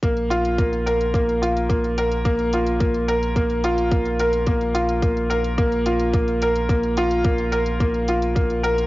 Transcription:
0.03 sub bass A#1, grand piano A#3, kick, closed hi-hat
0.17 closed hi-hat
0.30 grand piano F4, closed hi-hat
0.45 closed hi-hat
0.58 grand piano A#3, kick, closed hi-hat
0.73 closed hi-hat
0.86 grand piano A#4, closed hi-hat
1.01 closed hi-hat
1.14 grand piano A#3, kick, closed hi-hat
1.29 closed hi-hat
1.42 grand piano F4, closed hi-hat
1.57 closed hi-hat
1.69 grand piano A#3, kick, closed hi-hat
1.84 closed hi-hat
1.98 grand piano A#4, closed hi-hat
2.12 closed hi-hat
2.25 grand piano A#3, kick, closed hi-hat
2.39 closed hi-hat
2.53 grand piano F4, closed hi-hat
2.66 closed hi-hat
2.80 grand piano A#3, kick, closed hi-hat
2.94 closed hi-hat
3.08 grand piano A#4, closed hi-hat
3.23 closed hi-hat
3.36 grand piano A#3, kick, closed hi-hat
3.50 closed hi-hat
3.64 grand piano F4, closed hi-hat
3.78 closed hi-hat
3.91 grand piano A#3, kick, closed hi-hat
4.05 closed hi-hat
4.20 grand piano A#4, closed hi-hat
4.33 closed hi-hat
4.47 grand piano A#3, kick, closed hi-hat
4.61 closed hi-hat
4.75 grand piano F4, closed hi-hat
4.89 closed hi-hat
5.02 grand piano A#3, kick, closed hi-hat
5.17 closed hi-hat
5.30 grand piano A#4, closed hi-hat
5.44 closed hi-hat
5.58 grand piano A#3, kick, closed hi-hat
5.72 closed hi-hat
5.86 grand piano F4, closed hi-hat
6.00 closed hi-hat
6.14 grand piano A#3, kick, closed hi-hat
6.28 closed hi-hat
6.42 grand piano A#4, closed hi-hat
6.56 closed hi-hat
6.69 grand piano A#3, kick, closed hi-hat
6.83 closed hi-hat
6.97 grand piano F4, closed hi-hat
7.11 closed hi-hat
7.25 grand piano A#3, kick, closed hi-hat
7.38 closed hi-hat
7.52 grand piano A#4, closed hi-hat
7.66 closed hi-hat
7.80 grand piano A#3, kick, closed hi-hat
7.94 closed hi-hat
8.08 grand piano F4, closed hi-hat
8.22 closed hi-hat
8.35 grand piano A#3, kick, closed hi-hat
8.50 closed hi-hat
8.63 grand piano A#4, closed hi-hat
8.78 closed hi-hat

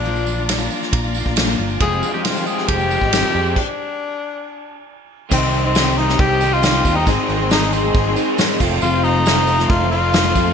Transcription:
Already playing: fingered electric bass A#1, tenor saxophone D4, string section F4 D5 A#5
0.05 steel-string acoustic guitar A#2 F3 A#3 D4 F4, tambourine
0.16 tambourine
0.26 steel-string acoustic guitar F3 A#3 D4 F4, tambourine
0.38 steel-string acoustic guitar A#3 D4 F4
0.49 steel-string acoustic guitar A#2 F3 A#3 D4 F4, snare, ride bell, tambourine
0.58 steel-string acoustic guitar A#3 D4 F4, tambourine
0.70 steel-string acoustic guitar F3 A#3 D4 F4, tambourine
0.82 snare, tambourine
0.93 fingered electric bass A#1, kick, ride bell, tambourine
1.03 steel-string acoustic guitar A#3 D4 F4, tambourine
1.15 steel-string acoustic guitar F3 A#3 D4 F4, tambourine
1.25 fingered electric bass A#1, steel-string acoustic guitar A#3 D4 F4, kick, tambourine
1.36 steel-string acoustic guitar A#2 F3 A#3 D4 F4, snare, ride bell, tambourine
1.49 snare
1.59 fingered electric bass G1, steel-string acoustic guitar F3 A#3 D4 F4
1.69 tambourine
1.80 fingered electric bass F1, steel-string acoustic guitar F2 C3 F3 G#3 C4 G4, string section G#3 G5, tenor saxophone G#4, kick, ride bell, tambourine
1.92 tambourine
2.02 steel-string acoustic guitar F3 G#3 C4 G4, tambourine
2.14 steel-string acoustic guitar F3 G#3 C4 G4, tenor saxophone G4
2.24 steel-string acoustic guitar F2 C3 F3 G#3 C4 G4, tenor saxophone F4, snare, ride bell, tambourine
2.34 steel-string acoustic guitar F3 G#3 C4 G4, tambourine
2.45 steel-string acoustic guitar F3 G#3 C4 G4, tenor saxophone G#4, tambourine
2.58 snare, tambourine
2.68 fingered electric bass F1, overdriven electric guitar C4, tenor saxophone G4, kick, ride bell, tambourine
2.79 steel-string acoustic guitar F3 G#3 C4 G4, tambourine
2.90 steel-string acoustic guitar F3 G#3 C4 G4, tambourine
3.01 fingered electric bass G#1, steel-string acoustic guitar F3 G#3 C4 G4, kick, tambourine
3.11 steel-string acoustic guitar F2 C3 F3 G#3 C4 G4, snare, ride bell, tambourine
3.24 snare, tambourine
3.33 fingered electric bass F2, steel-string acoustic guitar F3 G#3 C4 G4
3.46 tambourine
3.56 tenor saxophone D4, kick, crash
5.30 fingered electric bass C2, steel-string acoustic guitar C3 D#3 C4 D#4 G4, overdriven electric guitar G3, tenor saxophone C4, string section G4 D#5 C6, kick, crash, tambourine
5.53 open hi-hat, tambourine
5.64 tenor saxophone C4, steel-string acoustic guitar C4 D#4 G4
5.75 steel-string acoustic guitar C3 D#3 C4 D#4 G4, overdriven electric guitar G3, snare, open hi-hat, tambourine
5.96 steel-string acoustic guitar D#3 C4 D#4 G4, tenor saxophone D#4, open hi-hat
6.08 steel-string acoustic guitar C4 D#4 G4, snare
6.19 fingered electric bass C2, tenor saxophone G4, kick, open hi-hat
6.29 steel-string acoustic guitar C4 D#4 G4
6.40 steel-string acoustic guitar D#3 C4 D#4 G4, open hi-hat, tambourine
6.53 tenor saxophone F4
6.62 steel-string acoustic guitar C3 D#3 C4 D#4 G4, overdriven electric guitar G3, snare, open hi-hat, tambourine
6.84 fingered electric bass D#2, steel-string acoustic guitar D#3 C4 D#4 G4, kick, open hi-hat, tambourine
6.93 tenor saxophone D4 D#4, steel-string acoustic guitar G4
6.97 steel-string acoustic guitar C4 D#4
7.06 fingered electric bass G#1, steel-string acoustic guitar G#2 D#3 G#3 C4 D#4 G#4, tenor saxophone C4, string section G#4, kick, open hi-hat, tambourine
7.29 fingered electric bass G#1, open hi-hat, tambourine
7.38 steel-string acoustic guitar G#3 C4 D#4 G#4, tenor saxophone C4
7.49 steel-string acoustic guitar G#2 D#3 G#3 C4 D#4 G#4, tenor saxophone D#4, snare, open hi-hat, tambourine
7.72 steel-string acoustic guitar G#3 C4 D#4 G#4, tenor saxophone C4, open hi-hat, tambourine
7.83 steel-string acoustic guitar G#3 C4 D#4 G#4
7.94 fingered electric bass G#1, kick, open hi-hat
8.06 steel-string acoustic guitar G#3 C4 D#4 G#4
8.16 steel-string acoustic guitar G#3 C4 D#4 G#4, open hi-hat, tambourine
8.38 steel-string acoustic guitar G#2 D#3 G#3 C4 D#4 G#4, snare, open hi-hat, tambourine
8.60 fingered electric bass F1, overdriven electric guitar C3, steel-string acoustic guitar F3 A3 C4 F4, string section A4 F5, kick, tambourine, crash
8.64 overdriven electric guitar F2
8.72 steel-string acoustic guitar F3 A3 C4 F4
8.82 fingered electric bass F1, steel-string acoustic guitar F2 C3 F3 A3 C4 F4, tenor saxophone F4, tambourine
9.04 tenor saxophone D#4, open hi-hat, tambourine
9.16 steel-string acoustic guitar F3 A3 C4 F4
9.26 steel-string acoustic guitar F2 C3 F3 A3 C4 F4, snare, open hi-hat, tambourine
9.47 steel-string acoustic guitar F3 A3 C4 F4, open hi-hat, tambourine
9.58 steel-string acoustic guitar F3 A3 C4 F4, snare
9.69 fingered electric bass F1, tenor saxophone F4, kick, open hi-hat
9.81 steel-string acoustic guitar F3 A3 C4 F4
9.91 steel-string acoustic guitar F3 A3 C4 F4, tenor saxophone F4, open hi-hat
10.13 steel-string acoustic guitar F2 C3 F3 A3 C4 F4, snare, open hi-hat, tambourine
10.34 fingered electric bass F2, steel-string acoustic guitar F3 A3 C4 F4, kick, open hi-hat, tambourine
10.45 steel-string acoustic guitar F3 A3 C4 F4

